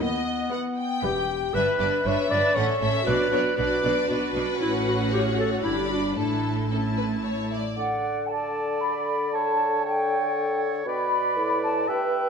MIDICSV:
0, 0, Header, 1, 10, 480
1, 0, Start_track
1, 0, Key_signature, 2, "major"
1, 0, Tempo, 511073
1, 8, Time_signature, 3, 2, 24, 8
1, 4809, Tempo, 528634
1, 7689, Tempo, 513699
1, 11427, End_track
2, 0, Start_track
2, 0, Title_t, "Flute section"
2, 0, Program_c, 0, 73
2, 6979, Note_on_c, 0, 76, 32
2, 7033, Note_off_c, 0, 76, 0
2, 7203, Note_on_c, 0, 78, 45
2, 7675, Note_off_c, 0, 78, 0
2, 7683, Note_on_c, 0, 81, 53
2, 8171, Note_off_c, 0, 81, 0
2, 8174, Note_on_c, 0, 83, 43
2, 8657, Note_on_c, 0, 81, 50
2, 8658, Note_off_c, 0, 83, 0
2, 9127, Note_off_c, 0, 81, 0
2, 9134, Note_on_c, 0, 79, 54
2, 9849, Note_off_c, 0, 79, 0
2, 10079, Note_on_c, 0, 83, 55
2, 10763, Note_off_c, 0, 83, 0
2, 10809, Note_on_c, 0, 81, 58
2, 11049, Note_off_c, 0, 81, 0
2, 11053, Note_on_c, 0, 79, 50
2, 11427, Note_off_c, 0, 79, 0
2, 11427, End_track
3, 0, Start_track
3, 0, Title_t, "Violin section"
3, 0, Program_c, 1, 48
3, 491, Note_on_c, 1, 78, 39
3, 850, Note_off_c, 1, 78, 0
3, 973, Note_on_c, 1, 76, 38
3, 1329, Note_off_c, 1, 76, 0
3, 1451, Note_on_c, 1, 76, 42
3, 1682, Note_off_c, 1, 76, 0
3, 1693, Note_on_c, 1, 76, 37
3, 1926, Note_off_c, 1, 76, 0
3, 1940, Note_on_c, 1, 76, 41
3, 2159, Note_off_c, 1, 76, 0
3, 2170, Note_on_c, 1, 76, 36
3, 2404, Note_off_c, 1, 76, 0
3, 2419, Note_on_c, 1, 76, 41
3, 2636, Note_off_c, 1, 76, 0
3, 2648, Note_on_c, 1, 76, 37
3, 2881, Note_off_c, 1, 76, 0
3, 2881, Note_on_c, 1, 74, 45
3, 3101, Note_off_c, 1, 74, 0
3, 3113, Note_on_c, 1, 74, 43
3, 3354, Note_off_c, 1, 74, 0
3, 3364, Note_on_c, 1, 74, 37
3, 3581, Note_off_c, 1, 74, 0
3, 3592, Note_on_c, 1, 74, 34
3, 3827, Note_off_c, 1, 74, 0
3, 3839, Note_on_c, 1, 74, 37
3, 4071, Note_off_c, 1, 74, 0
3, 4082, Note_on_c, 1, 74, 32
3, 4315, Note_on_c, 1, 78, 43
3, 4321, Note_off_c, 1, 74, 0
3, 5239, Note_off_c, 1, 78, 0
3, 5279, Note_on_c, 1, 83, 33
3, 5760, Note_off_c, 1, 83, 0
3, 5762, Note_on_c, 1, 81, 31
3, 6230, Note_off_c, 1, 81, 0
3, 6241, Note_on_c, 1, 81, 30
3, 7009, Note_off_c, 1, 81, 0
3, 11427, End_track
4, 0, Start_track
4, 0, Title_t, "Oboe"
4, 0, Program_c, 2, 68
4, 7222, Note_on_c, 2, 74, 29
4, 7661, Note_off_c, 2, 74, 0
4, 7710, Note_on_c, 2, 74, 34
4, 8671, Note_on_c, 2, 73, 33
4, 8685, Note_off_c, 2, 74, 0
4, 9143, Note_off_c, 2, 73, 0
4, 9147, Note_on_c, 2, 73, 41
4, 10075, Note_off_c, 2, 73, 0
4, 10108, Note_on_c, 2, 74, 45
4, 11042, Note_on_c, 2, 76, 41
4, 11056, Note_off_c, 2, 74, 0
4, 11427, Note_off_c, 2, 76, 0
4, 11427, End_track
5, 0, Start_track
5, 0, Title_t, "Violin section"
5, 0, Program_c, 3, 48
5, 5, Note_on_c, 3, 75, 42
5, 479, Note_off_c, 3, 75, 0
5, 485, Note_on_c, 3, 78, 39
5, 560, Note_off_c, 3, 78, 0
5, 730, Note_on_c, 3, 79, 47
5, 1436, Note_off_c, 3, 79, 0
5, 1455, Note_on_c, 3, 76, 45
5, 1531, Note_off_c, 3, 76, 0
5, 1689, Note_on_c, 3, 74, 43
5, 1764, Note_off_c, 3, 74, 0
5, 1930, Note_on_c, 3, 76, 39
5, 2398, Note_off_c, 3, 76, 0
5, 2407, Note_on_c, 3, 78, 50
5, 2483, Note_off_c, 3, 78, 0
5, 2643, Note_on_c, 3, 76, 43
5, 2879, Note_off_c, 3, 76, 0
5, 2883, Note_on_c, 3, 74, 43
5, 3119, Note_on_c, 3, 73, 45
5, 3123, Note_off_c, 3, 74, 0
5, 3195, Note_off_c, 3, 73, 0
5, 3371, Note_on_c, 3, 74, 43
5, 3839, Note_off_c, 3, 74, 0
5, 3853, Note_on_c, 3, 71, 53
5, 4812, Note_on_c, 3, 73, 38
5, 4813, Note_off_c, 3, 71, 0
5, 5278, Note_on_c, 3, 74, 40
5, 5282, Note_off_c, 3, 73, 0
5, 5750, Note_off_c, 3, 74, 0
5, 5759, Note_on_c, 3, 69, 31
5, 6191, Note_off_c, 3, 69, 0
5, 6251, Note_on_c, 3, 69, 31
5, 6324, Note_off_c, 3, 69, 0
5, 6492, Note_on_c, 3, 71, 28
5, 6565, Note_off_c, 3, 71, 0
5, 6740, Note_on_c, 3, 73, 35
5, 6973, Note_off_c, 3, 73, 0
5, 6988, Note_on_c, 3, 74, 31
5, 7217, Note_off_c, 3, 74, 0
5, 11427, End_track
6, 0, Start_track
6, 0, Title_t, "Clarinet"
6, 0, Program_c, 4, 71
6, 14, Note_on_c, 4, 59, 53
6, 970, Note_off_c, 4, 59, 0
6, 975, Note_on_c, 4, 67, 61
6, 1445, Note_on_c, 4, 71, 57
6, 1459, Note_off_c, 4, 67, 0
6, 1938, Note_on_c, 4, 73, 60
6, 1952, Note_off_c, 4, 71, 0
6, 2167, Note_on_c, 4, 74, 73
6, 2181, Note_off_c, 4, 73, 0
6, 2394, Note_on_c, 4, 73, 63
6, 2409, Note_off_c, 4, 74, 0
6, 2875, Note_off_c, 4, 73, 0
6, 2881, Note_on_c, 4, 71, 60
6, 3353, Note_off_c, 4, 71, 0
6, 3361, Note_on_c, 4, 71, 55
6, 3834, Note_off_c, 4, 71, 0
6, 4331, Note_on_c, 4, 64, 55
6, 4439, Note_off_c, 4, 64, 0
6, 4578, Note_on_c, 4, 66, 48
6, 4684, Note_off_c, 4, 66, 0
6, 4816, Note_on_c, 4, 67, 50
6, 4920, Note_off_c, 4, 67, 0
6, 5056, Note_on_c, 4, 69, 52
6, 5160, Note_off_c, 4, 69, 0
6, 5278, Note_on_c, 4, 64, 44
6, 5386, Note_off_c, 4, 64, 0
6, 5512, Note_on_c, 4, 62, 33
6, 5747, Note_off_c, 4, 62, 0
6, 5753, Note_on_c, 4, 62, 42
6, 6255, Note_on_c, 4, 61, 34
6, 6269, Note_off_c, 4, 62, 0
6, 6736, Note_off_c, 4, 61, 0
6, 7219, Note_on_c, 4, 69, 30
6, 7660, Note_off_c, 4, 69, 0
6, 7692, Note_on_c, 4, 69, 35
6, 8640, Note_off_c, 4, 69, 0
6, 8660, Note_on_c, 4, 69, 30
6, 9128, Note_off_c, 4, 69, 0
6, 9143, Note_on_c, 4, 69, 36
6, 10073, Note_off_c, 4, 69, 0
6, 10085, Note_on_c, 4, 71, 42
6, 11008, Note_off_c, 4, 71, 0
6, 11045, Note_on_c, 4, 71, 43
6, 11427, Note_off_c, 4, 71, 0
6, 11427, End_track
7, 0, Start_track
7, 0, Title_t, "Viola section"
7, 0, Program_c, 5, 48
7, 485, Note_on_c, 5, 59, 39
7, 485, Note_on_c, 5, 71, 39
7, 847, Note_off_c, 5, 59, 0
7, 847, Note_off_c, 5, 71, 0
7, 968, Note_on_c, 5, 71, 41
7, 971, Note_on_c, 5, 59, 41
7, 1326, Note_off_c, 5, 71, 0
7, 1328, Note_off_c, 5, 59, 0
7, 1447, Note_on_c, 5, 62, 38
7, 1449, Note_on_c, 5, 71, 38
7, 1670, Note_off_c, 5, 62, 0
7, 1672, Note_off_c, 5, 71, 0
7, 1681, Note_on_c, 5, 62, 34
7, 1683, Note_on_c, 5, 71, 30
7, 1909, Note_off_c, 5, 71, 0
7, 1911, Note_off_c, 5, 62, 0
7, 1921, Note_on_c, 5, 71, 33
7, 1923, Note_on_c, 5, 62, 36
7, 2153, Note_off_c, 5, 62, 0
7, 2153, Note_off_c, 5, 71, 0
7, 2164, Note_on_c, 5, 62, 38
7, 2164, Note_on_c, 5, 71, 37
7, 2400, Note_off_c, 5, 62, 0
7, 2400, Note_off_c, 5, 71, 0
7, 2406, Note_on_c, 5, 61, 39
7, 2406, Note_on_c, 5, 69, 39
7, 2627, Note_off_c, 5, 61, 0
7, 2632, Note_off_c, 5, 69, 0
7, 2638, Note_on_c, 5, 61, 41
7, 2643, Note_on_c, 5, 69, 39
7, 2876, Note_off_c, 5, 61, 0
7, 2879, Note_off_c, 5, 69, 0
7, 2880, Note_on_c, 5, 66, 42
7, 2883, Note_on_c, 5, 62, 45
7, 3105, Note_off_c, 5, 66, 0
7, 3106, Note_off_c, 5, 62, 0
7, 3116, Note_on_c, 5, 66, 33
7, 3117, Note_on_c, 5, 62, 35
7, 3350, Note_off_c, 5, 66, 0
7, 3351, Note_off_c, 5, 62, 0
7, 3361, Note_on_c, 5, 66, 37
7, 3362, Note_on_c, 5, 62, 36
7, 3589, Note_off_c, 5, 66, 0
7, 3590, Note_off_c, 5, 62, 0
7, 3601, Note_on_c, 5, 62, 36
7, 3601, Note_on_c, 5, 66, 34
7, 3831, Note_off_c, 5, 62, 0
7, 3831, Note_off_c, 5, 66, 0
7, 3842, Note_on_c, 5, 62, 37
7, 3842, Note_on_c, 5, 66, 35
7, 4068, Note_off_c, 5, 62, 0
7, 4068, Note_off_c, 5, 66, 0
7, 4079, Note_on_c, 5, 62, 39
7, 4079, Note_on_c, 5, 66, 34
7, 4309, Note_off_c, 5, 66, 0
7, 4319, Note_off_c, 5, 62, 0
7, 4320, Note_on_c, 5, 61, 42
7, 4321, Note_on_c, 5, 66, 44
7, 5241, Note_off_c, 5, 61, 0
7, 5241, Note_off_c, 5, 66, 0
7, 5273, Note_on_c, 5, 62, 32
7, 5273, Note_on_c, 5, 67, 35
7, 5515, Note_off_c, 5, 67, 0
7, 5519, Note_on_c, 5, 66, 31
7, 5591, Note_off_c, 5, 66, 0
7, 5748, Note_off_c, 5, 62, 0
7, 5760, Note_on_c, 5, 64, 30
7, 5761, Note_on_c, 5, 57, 32
7, 6231, Note_off_c, 5, 64, 0
7, 6233, Note_off_c, 5, 57, 0
7, 6242, Note_on_c, 5, 64, 28
7, 6244, Note_on_c, 5, 57, 29
7, 7010, Note_off_c, 5, 64, 0
7, 7011, Note_off_c, 5, 57, 0
7, 11427, End_track
8, 0, Start_track
8, 0, Title_t, "Bassoon"
8, 0, Program_c, 6, 70
8, 7211, Note_on_c, 6, 50, 36
8, 10049, Note_off_c, 6, 50, 0
8, 10085, Note_on_c, 6, 47, 41
8, 10558, Note_on_c, 6, 45, 44
8, 10572, Note_off_c, 6, 47, 0
8, 11037, Note_off_c, 6, 45, 0
8, 11043, Note_on_c, 6, 43, 47
8, 11427, Note_off_c, 6, 43, 0
8, 11427, End_track
9, 0, Start_track
9, 0, Title_t, "Cello section"
9, 0, Program_c, 7, 48
9, 9, Note_on_c, 7, 39, 53
9, 390, Note_off_c, 7, 39, 0
9, 972, Note_on_c, 7, 40, 39
9, 1351, Note_off_c, 7, 40, 0
9, 1452, Note_on_c, 7, 43, 54
9, 1528, Note_off_c, 7, 43, 0
9, 1689, Note_on_c, 7, 43, 41
9, 1764, Note_off_c, 7, 43, 0
9, 1925, Note_on_c, 7, 43, 38
9, 2000, Note_off_c, 7, 43, 0
9, 2172, Note_on_c, 7, 43, 40
9, 2247, Note_off_c, 7, 43, 0
9, 2405, Note_on_c, 7, 45, 38
9, 2480, Note_off_c, 7, 45, 0
9, 2647, Note_on_c, 7, 45, 42
9, 2722, Note_off_c, 7, 45, 0
9, 2887, Note_on_c, 7, 47, 51
9, 2963, Note_off_c, 7, 47, 0
9, 3130, Note_on_c, 7, 47, 42
9, 3205, Note_off_c, 7, 47, 0
9, 3362, Note_on_c, 7, 47, 44
9, 3437, Note_off_c, 7, 47, 0
9, 3609, Note_on_c, 7, 47, 43
9, 3684, Note_off_c, 7, 47, 0
9, 3849, Note_on_c, 7, 47, 34
9, 3924, Note_off_c, 7, 47, 0
9, 4089, Note_on_c, 7, 47, 40
9, 4164, Note_off_c, 7, 47, 0
9, 4332, Note_on_c, 7, 45, 47
9, 5247, Note_off_c, 7, 45, 0
9, 5278, Note_on_c, 7, 43, 35
9, 5760, Note_off_c, 7, 43, 0
9, 5764, Note_on_c, 7, 45, 37
9, 7031, Note_off_c, 7, 45, 0
9, 11427, End_track
10, 0, Start_track
10, 0, Title_t, "Double bass section"
10, 0, Program_c, 8, 48
10, 11, Note_on_c, 8, 39, 42
10, 391, Note_off_c, 8, 39, 0
10, 979, Note_on_c, 8, 28, 49
10, 1355, Note_off_c, 8, 28, 0
10, 1452, Note_on_c, 8, 31, 45
10, 1527, Note_off_c, 8, 31, 0
10, 1689, Note_on_c, 8, 31, 42
10, 1764, Note_off_c, 8, 31, 0
10, 1937, Note_on_c, 8, 31, 43
10, 2012, Note_off_c, 8, 31, 0
10, 2173, Note_on_c, 8, 31, 46
10, 2248, Note_off_c, 8, 31, 0
10, 2408, Note_on_c, 8, 33, 39
10, 2483, Note_off_c, 8, 33, 0
10, 2644, Note_on_c, 8, 33, 44
10, 2719, Note_off_c, 8, 33, 0
10, 2888, Note_on_c, 8, 35, 48
10, 2963, Note_off_c, 8, 35, 0
10, 3128, Note_on_c, 8, 35, 43
10, 3203, Note_off_c, 8, 35, 0
10, 3366, Note_on_c, 8, 35, 43
10, 3441, Note_off_c, 8, 35, 0
10, 3607, Note_on_c, 8, 35, 42
10, 3682, Note_off_c, 8, 35, 0
10, 3845, Note_on_c, 8, 35, 41
10, 3920, Note_off_c, 8, 35, 0
10, 4084, Note_on_c, 8, 35, 36
10, 4159, Note_off_c, 8, 35, 0
10, 4322, Note_on_c, 8, 33, 38
10, 5242, Note_off_c, 8, 33, 0
10, 5285, Note_on_c, 8, 31, 35
10, 5764, Note_off_c, 8, 31, 0
10, 5765, Note_on_c, 8, 33, 36
10, 7031, Note_off_c, 8, 33, 0
10, 11427, End_track
0, 0, End_of_file